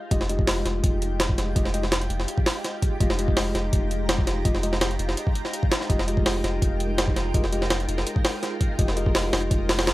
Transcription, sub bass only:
0.11 F1
0.65 F1
0.84 F1
1.56 F1
2.10 F1
3.00 F1
3.55 F1
3.73 F1
4.45 F1
4.99 F1
5.90 F1
6.44 F1
6.62 F1
7.34 F1
7.88 F1
8.79 F1
9.33 F1
9.51 F1

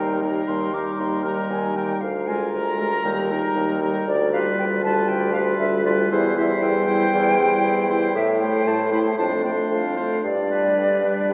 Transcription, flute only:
Already playing: G5
0.22 A#5
0.48 C6
0.74 D6
0.99 C6
1.24 A#5
1.50 G#5
1.76 G5
2.01 F5
2.27 G#5
2.53 A#5
4.07 D5
4.33 F5
4.59 G5
4.83 A5
5.08 G5
5.33 F5
5.59 E5
5.85 D5
6.11 C5
6.36 E5
6.62 G5
8.15 E5
8.41 G5
8.67 A5
8.93 B5
9.18 A5
9.44 G5
9.71 F5
10.25 D5

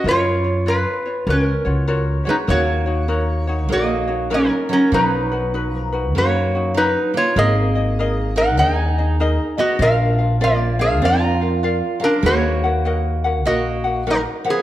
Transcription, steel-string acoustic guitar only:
2.27 G#3
2.49 A#3
3.69 A#3
4.31 F#3
4.69 F#3
4.92 F#3
5.70 F3
6.15 A#3
6.74 F#3
7.14 A#3
7.36 A#3
8.36 D#4
8.57 D#4
9.58 B3
9.79 D4
10.41 A#3
10.79 D4
11.02 F4
12.00 F#3
12.23 A#3
13.45 A#3
14.07 F#3
14.45 F3

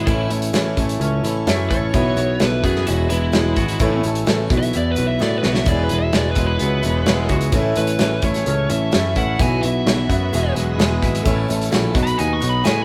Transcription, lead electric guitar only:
0.07 E4
1.70 C#5
2.42 B4
2.64 G#4
2.86 F#4
3.10 E4
4.58 E5
4.77 D5
4.91 B4
5.07 E5
5.23 D5
5.38 B4
5.53 E5
5.68 D5
5.84 B4
5.99 E5
6.14 D5
6.31 B4
6.47 B4
7.77 B4
8.24 C#5
8.71 E5
9.17 F#5
9.41 G#5
9.62 E5
12.03 B5
12.18 G#5
12.33 C#6
12.49 B5
12.64 G#5

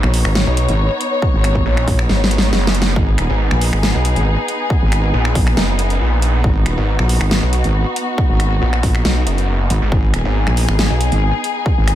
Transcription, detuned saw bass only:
0.47 B1
1.66 A#1
2.09 G#1
2.53 F#1
3.29 G#1
3.95 B1
5.14 A#1
5.57 F#1
6.01 A#1
6.77 G#1
7.42 B1
8.62 A#1
9.05 B1
9.27 F#1
9.82 G#1
10.25 G#1
10.90 B1

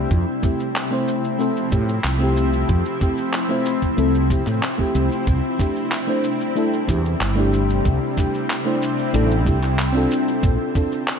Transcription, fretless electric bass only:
0.11 F2
1.72 A2
2.04 C2
2.69 F2
3.98 C2
4.47 A2
4.95 C2
5.27 C2
6.89 E2
7.20 G1
7.85 C2
9.14 A1
9.46 C2
10.43 A#1

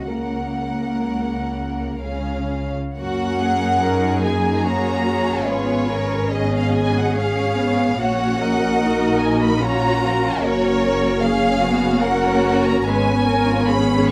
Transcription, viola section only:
0.06 A#3
2.01 C#4
2.97 A#3 C#4
3.82 C#4 D#4
4.23 A#3
4.64 C#4
5.49 B3
5.90 C#4
6.32 B3
7.15 C#4
7.56 B3
7.99 A#3 C#4
8.80 A#3 D#4
9.61 C#4
10.41 A#3
11.21 A#3 C#4
11.60 B3
12.02 A#3 C#4
12.87 B3 C#4

